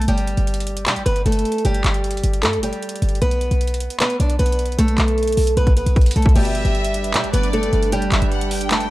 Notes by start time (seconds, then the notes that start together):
0.02 closed hi-hat
0.08 G1 G3 G4, closed hi-hat
0.18 closed hi-hat
0.27 closed hi-hat
0.37 G1, closed hi-hat
0.47 closed hi-hat
0.54 closed hi-hat
0.60 closed hi-hat
0.67 closed hi-hat
0.77 closed hi-hat
0.86 B2 G3 G4, clap, closed hi-hat
0.96 G1, closed hi-hat
1.06 G1 B3 B4, closed hi-hat
1.16 closed hi-hat
1.26 G1 A3 A4, closed hi-hat
1.32 closed hi-hat
1.39 closed hi-hat
1.45 closed hi-hat
1.52 closed hi-hat
1.58 closed hi-hat
1.65 G1 G3 G4, closed hi-hat
1.75 closed hi-hat
1.84 G1, clap, closed hi-hat
1.94 closed hi-hat
2.04 closed hi-hat
2.11 closed hi-hat
2.17 closed hi-hat
2.24 G1, closed hi-hat
2.34 closed hi-hat
2.43 G2 A3 A4, clap, closed hi-hat
2.53 closed hi-hat
2.58 G1
2.63 G3 G4, closed hi-hat
2.73 closed hi-hat
2.83 closed hi-hat
2.89 closed hi-hat
2.96 closed hi-hat
3.02 G1, closed hi-hat
3.09 closed hi-hat
3.15 closed hi-hat
3.22 B1 B3 B4, closed hi-hat
3.31 closed hi-hat
3.41 closed hi-hat
3.51 B1, closed hi-hat
3.61 closed hi-hat
3.67 closed hi-hat
3.74 closed hi-hat
3.80 closed hi-hat
3.90 closed hi-hat
4.00 B3 B4, clap, closed hi-hat
4.10 closed hi-hat
4.20 B1 D4 D5, closed hi-hat
4.30 closed hi-hat
4.39 B1 B3 B4, closed hi-hat
4.46 closed hi-hat
4.52 closed hi-hat
4.59 closed hi-hat
4.66 closed hi-hat
4.72 closed hi-hat
4.78 B1 A3 A4, closed hi-hat
4.88 closed hi-hat
4.98 B1, clap, closed hi-hat
5.08 closed hi-hat
5.18 closed hi-hat
5.23 closed hi-hat
5.28 closed hi-hat
5.32 closed hi-hat
5.37 B1, open hi-hat
5.47 closed hi-hat
5.57 B1 B3 B4, closed hi-hat
5.67 kick, closed hi-hat
5.77 B3 B4, closed hi-hat
5.86 B1, closed hi-hat
5.96 kick, closed hi-hat
6.01 closed hi-hat
6.06 closed hi-hat
6.11 closed hi-hat
6.16 B1 A3 A4, closed hi-hat
6.22 kick, closed hi-hat
6.29 closed hi-hat
6.35 G1 B2 D3 G3 D4 G4 B4 E5, closed hi-hat, crash
6.45 closed hi-hat
6.55 closed hi-hat
6.65 G1, closed hi-hat
6.75 closed hi-hat
6.84 closed hi-hat
6.94 closed hi-hat
7.04 closed hi-hat
7.14 B2 G3 G4, clap, closed hi-hat
7.24 G1, closed hi-hat
7.33 G1 B3 B4 D5, closed hi-hat
7.43 closed hi-hat
7.53 A3 A4, closed hi-hat
7.63 closed hi-hat
7.73 G1, closed hi-hat
7.83 closed hi-hat
7.92 G3 G4, closed hi-hat
8.02 closed hi-hat
8.12 G1 E5, clap, closed hi-hat
8.22 G1, closed hi-hat
8.32 F#5, closed hi-hat
8.41 closed hi-hat
8.51 G5, open hi-hat
8.61 closed hi-hat
8.70 A3 A4, clap, closed hi-hat
8.81 closed hi-hat